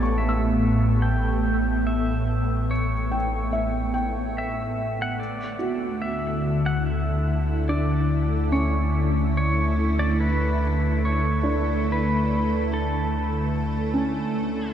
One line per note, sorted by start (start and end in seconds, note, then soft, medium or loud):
0.00 5.15 A1 medium
0.00 5.18 A2 medium
0.00 5.17 A3 medium
0.00 5.96 B3 medium
0.00 0.99 G4 medium
0.00 0.21 D5 medium
0.00 2.70 A5 medium
0.00 0.03 C#6 medium
0.00 2.92 C#6 soft
0.18 1.04 E5 loud
0.29 3.16 E6 soft
1.02 1.86 G5 medium
1.87 2.72 E5 medium
2.71 4.41 C#5 medium
3.12 3.92 G5 medium
3.53 5.57 E5 medium
3.94 5.56 G5 medium
4.38 5.01 E5 medium
5.02 5.21 F#5 medium
5.17 14.73 D2 medium
5.17 14.73 D3 medium
5.17 14.73 A3 medium
5.17 6.05 D5 medium
5.38 14.73 A3 medium
5.59 14.73 E4 medium
5.59 8.52 F#4 medium
5.87 14.73 A4 medium
6.02 6.60 E5 medium
6.66 6.86 F#5 medium
6.86 7.72 E5 medium
7.69 10.61 D4 soft
7.69 8.52 D5 medium
8.52 11.44 C#4 medium
8.52 9.36 C#5 medium
9.37 9.99 C#5 medium
9.99 10.20 D5 medium
10.20 11.05 B4 medium
11.05 11.89 C#5 medium
11.43 14.36 D4 medium
11.92 12.74 B4 medium
12.73 14.73 A4 medium
13.94 14.73 C#4 medium